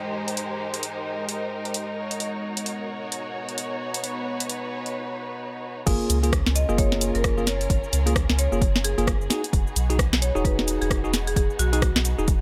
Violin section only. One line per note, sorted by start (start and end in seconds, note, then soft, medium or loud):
0.00 1.94 G#3 medium
0.00 5.83 D#4 medium
0.00 1.94 G4 medium
0.00 3.76 A#4 medium
0.00 1.94 C5 medium
1.97 5.83 F#4 medium
1.97 5.83 C#5 medium
3.80 5.84 B4 medium
5.87 9.27 C#4 medium
5.87 9.27 F4 medium
5.87 12.41 G#4 medium
5.87 9.27 A#4 medium
9.30 12.41 B3 medium
9.30 12.41 D#4 medium
9.30 12.41 F#4 medium